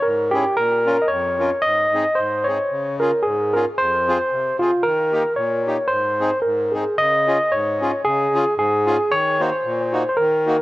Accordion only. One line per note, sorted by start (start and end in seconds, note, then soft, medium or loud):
0.05 0.45 G#2 medium
0.34 0.45 C#4 medium
0.34 0.45 E4 soft
0.34 0.45 G#4 medium
0.57 0.98 A#2 medium
0.86 0.97 C#4 medium
0.86 0.97 F4 medium
0.86 0.97 A#4 medium
1.10 1.51 F2 medium
1.40 1.50 C#4 medium
1.40 1.51 F4 soft
1.40 1.51 A#4 medium
1.64 2.04 G#2 medium
1.94 2.04 C4 medium
1.94 2.04 D#4 medium
1.94 2.04 G#4 medium
2.18 2.58 G#2 medium
2.48 2.58 C4 soft
2.48 2.58 D#4 soft
2.48 2.58 G#4 medium
2.71 3.12 C#3 medium
3.00 3.11 C#4 medium
3.00 3.11 F4 medium
3.00 3.11 G#4 medium
3.25 3.65 G#2 medium
3.55 3.65 C#4 medium
3.55 3.65 F4 soft
3.55 3.65 G#4 medium
3.79 4.18 F2 medium
4.08 4.18 C4 medium
4.08 4.18 F4 medium
4.08 4.18 G#4 medium
4.31 4.71 C3 medium
4.61 4.71 C4 medium
4.61 4.71 F4 medium
4.61 4.71 G#4 medium
4.84 5.24 D#3 medium
5.12 5.23 A#3 medium
5.12 5.23 D#4 medium
5.12 5.23 G4 medium
5.37 5.77 A#2 medium
5.67 5.77 A#3 medium
5.67 5.77 D#4 medium
5.67 5.77 G4 medium
5.90 6.31 G#2 medium
6.20 6.30 C4 medium
6.20 6.31 D#4 soft
6.20 6.30 G#4 medium
6.45 6.85 G#2 medium
6.74 6.84 C4 soft
6.74 6.84 D#4 soft
6.74 6.84 G#4 medium
6.98 7.38 C#3 medium
7.27 7.38 C#4 medium
7.27 7.38 F4 medium
7.27 7.38 G#4 medium
7.52 7.92 G#2 medium
7.81 7.91 C#4 medium
7.81 7.91 F4 medium
7.81 7.91 G#4 medium
8.04 8.44 C#3 medium
8.34 8.44 C#4 medium
8.34 8.44 F4 medium
8.34 8.44 G#4 medium
8.57 8.97 G#2 medium
8.86 8.97 C#4 medium
8.86 8.97 F4 medium
8.86 8.97 G#4 medium
9.11 9.51 D#3 medium
9.40 9.50 A#3 medium
9.40 9.50 D#4 medium
9.40 9.50 F#4 medium
9.64 10.04 A#2 medium
9.93 10.03 A#3 medium
9.93 10.03 D#4 medium
9.93 10.03 F#4 medium
10.19 10.58 D#3 medium
10.47 10.57 A#3 medium
10.47 10.57 D#4 medium
10.47 10.57 F#4 medium